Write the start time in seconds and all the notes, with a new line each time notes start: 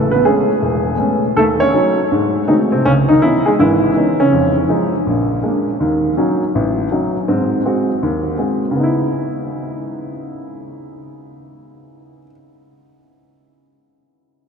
Already playing: A1 C#3
0.11 B3 B4
0.25 G#3 A3 B3 C#4 G#4
0.62 E1
0.98 G#3 A3 B3 C#4
1.36 D#2 A3 A4
1.60 C#4 C#5
1.73 F#3 C#4 D#4
2.12 G#2
2.48 D#3 G#3 A3 C4 D#4 F#4
2.72 C3 C4
2.85 C#2 C#3 C#4
3.09 D#3 D#4
3.22 E3 B3 C#4 D#4 E4
3.46 G#3 G#4
3.59 G#1 G#2 E3 E4
3.96 E3 B3 C#4 D#4
4.20 C#3 C#4
4.32 F2
4.69 F3 G#3 D#4
5.06 A#1
5.43 G#3 A#3 D4
5.80 D#2 D#3
6.17 F#3 C#4 D#4
6.55 A1
6.91 F#3 C#4 D#4
7.28 G#2 C4
7.65 G#3 C4 F#4
8.03 D#2
8.38 G#3 C4 F#4
8.71 C#3
8.75 B3
8.80 D#4 E4